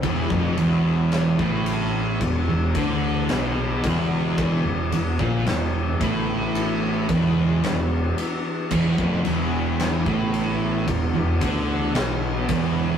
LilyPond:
<<
  \new Staff \with { instrumentName = "String machine" } { \time 4/4 \key c \lydian \tempo 4 = 55 <e b fis'>1~ | <e b fis'>1~ | <e b fis'>1 | }
  \new Staff \with { instrumentName = "Distorted electric guitar" } { \clef bass \time 4/4 \key c \lydian e,16 f,16 e,8. a,8. e,16 e,16 d8 b,8 e,8~ | e,16 e,16 e,16 ais,16 e,8 a,4 e,8 e,8 r8 | e,16 f,16 e,8. a,8. e,16 e,16 d8 b,8 e,8 | }
  \new Staff \with { instrumentName = "Distorted electric guitar" } { \clef bass \time 4/4 \key c \lydian e,16 f,16 e,8. a,8. e,16 e,16 d8 b,8 e,8~ | e,16 e,16 e,16 ais,16 e,8 a,4 e,8 e,8 r8 | e,16 f,16 e,8. a,8. e,16 e,16 d8 b,8 e,8 | }
  \new Staff \with { instrumentName = "Fingered electric bass" } { \clef bass \time 4/4 \key c \lydian e,,16 f,,16 e,,8. a,,8. e,,16 e,,16 d,8 b,,8 e,,8~ | e,,16 e,,16 e,,16 ais,,16 e,,8 a,,4 e,,8 e,,8 r8 | e,,16 f,,16 e,,8. a,,8. e,,16 e,,16 d,8 b,,8 e,,8 | }
  \new DrumStaff \with { instrumentName = "Drums" } \drummode { \time 4/4 <bd cymr>16 bd16 cymr8 <cymr sn>16 bd16 cymr8 <bd cymr>8 <bd cymr>8 <cymr sn>8 <bd cymr>8 | <bd cymr>8 cymr16 bd16 <cymr sn>8 <bd cymr>8 cymr8 <bd cymr>8 <cymr sn>8 cymr8 | <cymc bd>16 bd16 cymr8 <cymr sn>16 bd16 cymr8 <bd cymr>8 <bd cymr>8 <cymr sn>8 <bd cymr>8 | }
>>